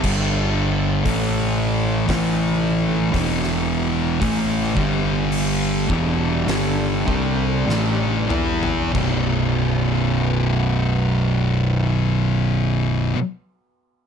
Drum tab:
CC |x---------------|----------------|x---------------|
HH |----o---o---o---|o---o---o-------|----------------|
SD |--------o----o--|--------o---o---|----------------|
T2 |----------------|--------------o-|----------------|
FT |----------------|---------------o|----------------|
BD |o---o---o---o---|o-o---o---o-----|o---------------|